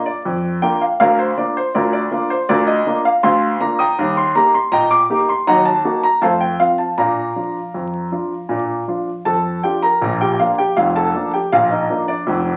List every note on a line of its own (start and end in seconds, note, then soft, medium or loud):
0.06 0.51 D5 medium
0.25 0.57 F2 medium
0.62 0.83 A#3 medium
0.62 0.83 D4 medium
0.62 0.83 F4 medium
0.62 0.81 G5 medium
0.81 0.98 F5 medium
1.00 1.32 D2 medium
1.00 1.18 A#4 medium
1.00 1.18 D5 medium
1.00 1.18 F5 medium
1.19 1.37 C5 medium
1.37 1.58 A#3 soft
1.37 1.58 D4 medium
1.37 1.59 F4 soft
1.37 1.56 D5 medium
1.57 1.75 C5 medium
1.75 2.06 D2 medium
1.75 1.92 F4 medium
1.75 1.92 A#4 medium
1.75 1.91 D5 medium
1.93 2.28 D5 medium
2.11 2.32 A#3 soft
2.11 2.32 D4 medium
2.11 2.32 F4 medium
2.30 2.49 C5 medium
2.49 2.81 D2 medium
2.49 2.67 F4 medium
2.49 2.66 A#4 medium
2.49 2.67 D5 medium
2.67 2.97 D#5 medium
2.87 3.07 A#3 medium
2.87 3.07 D4 medium
2.87 3.07 F4 medium
3.05 3.23 F5 medium
3.23 3.55 D2 medium
3.23 3.58 F5 medium
3.23 3.59 C6 loud
3.60 3.81 A#3 soft
3.60 3.82 D4 medium
3.60 3.82 F4 medium
3.60 3.78 A#5 medium
3.79 4.14 G5 medium
3.79 4.14 A#5 medium
3.79 4.14 D#6 medium
3.99 4.30 D#2 medium
3.99 4.20 G3 medium
4.17 4.35 C6 loud
4.35 4.56 A#3 medium
4.35 4.56 D#4 soft
4.35 4.56 G4 medium
4.35 4.54 A#5 medium
4.54 4.73 C6 medium
4.72 5.04 A#2 medium
4.72 4.90 D#5 medium
4.72 4.90 G5 medium
4.72 4.91 A#5 loud
4.91 5.21 D6 medium
5.10 5.30 A#3 medium
5.10 5.31 D#4 soft
5.10 5.31 G4 medium
5.29 5.47 C6 medium
5.47 5.79 D#2 medium
5.47 5.69 F#3 medium
5.47 5.65 D#5 medium
5.47 5.65 F#5 medium
5.47 5.66 A#5 loud
5.65 6.01 A5 medium
5.85 6.05 A#3 medium
5.85 6.06 D#4 soft
5.85 6.06 F#4 soft
6.03 6.22 A#5 medium
6.22 6.54 F2 medium
6.22 6.44 A3 soft
6.22 6.40 C5 medium
6.22 6.40 F5 medium
6.22 6.41 A5 medium
6.41 6.60 G5 medium
6.60 6.81 F3 soft
6.60 6.81 C4 soft
6.60 6.81 F4 soft
6.60 6.79 F5 medium
6.78 6.98 A5 medium
6.98 7.30 A#2 medium
6.98 7.20 D4 soft
6.98 9.23 D5 medium
6.98 9.22 F5 medium
6.98 8.80 A#5 medium
7.36 7.57 F3 soft
7.36 7.57 D4 soft
7.36 7.57 F4 soft
7.74 8.07 F2 medium
8.12 8.33 F3 soft
8.12 8.33 D4 soft
8.12 8.33 F4 soft
8.49 8.82 A#2 medium
8.49 8.72 D4 soft
8.88 9.09 F3 soft
8.88 9.09 D4 soft
8.88 9.09 F4 soft
9.25 9.58 F2 medium
9.25 9.62 A4 medium
9.25 9.62 A5 medium
9.63 9.85 F3 soft
9.63 9.85 D4 soft
9.63 9.85 F4 soft
9.63 9.82 G4 soft
9.63 9.83 G5 medium
9.82 10.18 A#4 medium
9.82 10.18 A#5 medium
10.02 10.34 A#1 medium
10.02 10.34 A#2 medium
10.21 10.39 G4 medium
10.21 10.40 G5 medium
10.39 10.60 F3 medium
10.39 10.61 A#3 soft
10.39 10.61 D4 medium
10.39 10.58 F4 soft
10.39 10.58 F5 medium
10.58 10.76 G4 medium
10.58 10.77 G5 medium
10.77 11.09 F1 medium
10.77 11.09 F2 medium
10.77 10.95 F4 medium
10.77 10.95 F5 medium
10.96 11.31 A4 medium
10.96 11.31 A5 medium
11.14 11.35 F3 soft
11.14 11.35 A#3 soft
11.14 11.36 D4 medium
11.34 11.51 G4 soft
11.34 11.52 G5 medium
11.52 11.84 A#1 medium
11.52 11.84 A#2 medium
11.52 11.70 F4 medium
11.52 11.71 F5 medium
11.71 12.06 D#4 medium
11.71 12.00 D#5 medium
11.90 12.10 F3 medium
11.90 12.10 A#3 medium
11.90 12.08 D4 medium
12.08 12.57 D4 medium
12.08 12.57 D5 medium
12.27 12.57 F1 medium
12.27 12.57 F2 medium